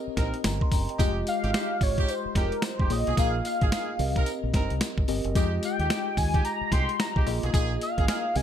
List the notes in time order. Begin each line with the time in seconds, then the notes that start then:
Already playing: C4 G4 A#4 D#5
0.07 muted fingered electric bass stroke
0.17 A#1 C4 D#4 A#4, kick, snare, closed hi-hat
0.34 closed hi-hat
0.44 G1 G5 A#5, snare, closed hi-hat, tambourine
0.61 C6, kick
0.72 F#1 G5 A#5, kick, open hi-hat, tambourine
0.89 D#5 G5, closed hi-hat
0.98 F1 G#3 D#4 F4 G4 D#5, kick, closed hi-hat, tambourine
1.27 F5, closed hi-hat, tambourine
1.43 G#1 G#3 D#4 G4, closed hi-hat
1.53 G#3 D#4 G4, snare, closed hi-hat, tambourine
1.81 G#1 C#5, kick, open hi-hat, tambourine
1.98 G#3 D#4 G4, kick, closed hi-hat
2.08 C5, closed hi-hat, tambourine
2.25 muted fingered electric bass stroke
2.35 F1 G#3 D#4 G4 A#4, kick, snare, closed hi-hat
2.52 closed hi-hat
2.62 C5, snare, closed hi-hat, tambourine
2.79 F1 G#3 D#4 G4, kick
2.90 A#1 A#3 F4 G#4 C#5 D#5, open hi-hat, tambourine
2.98 D#5
3.07 B1 A#3 D#4 G#4, closed hi-hat
3.17 A#1 A#3 D#4 G#4 F5, kick, closed hi-hat, tambourine
3.45 F5, closed hi-hat, tambourine
3.61 G#1 A#3 D#4 G#4, kick, closed hi-hat
3.72 A#3 D#4 G#4, snare, closed hi-hat, tambourine
3.99 C2 C4 G4 A#4 D#5, open hi-hat, tambourine
4.16 C4 D#4 A#4, kick, closed hi-hat
4.26 closed hi-hat, tambourine
4.43 A#1
4.54 G1 C4 D#4 A#4, kick, snare, closed hi-hat
4.70 C2, closed hi-hat
4.81 snare, closed hi-hat, tambourine
4.98 G#1, kick
5.08 G1 C4 G4 A#4 D#5, open hi-hat, tambourine
5.25 F#1, closed hi-hat
5.35 F2 G#3 D#4 F4 G4 D#5, kick, closed hi-hat, tambourine
5.63 G5, closed hi-hat, tambourine
5.79 D#2 G#3 D#4 G4, closed hi-hat
5.90 G#3 D#4 G4, snare, closed hi-hat, tambourine
6.17 D#2 G#5, kick, open hi-hat, tambourine
6.34 G#3 D#4 G4, kick, closed hi-hat
6.45 A#5, closed hi-hat, tambourine
6.61 muted fingered electric bass stroke
6.72 C2 G#3 D#4 G4 C6, kick, snare, closed hi-hat
6.89 closed hi-hat
7.00 A#5, snare, closed hi-hat, tambourine
7.16 C2 G#3 D#4 G4, kick
7.26 A#1 A#3 F4 G#4 D#5, open hi-hat, tambourine
7.43 B1 A#3 D#4 G#4, closed hi-hat
7.53 A#1 A#3 D#4 G#4, kick, closed hi-hat, tambourine
7.81 F5, closed hi-hat, tambourine
7.98 G#1 A#3 D#4 G#4, kick, closed hi-hat
8.08 A#3 D#4 G#4, snare, closed hi-hat, tambourine
8.36 C2 C4 G4 A#4 D#5 G#5, open hi-hat, tambourine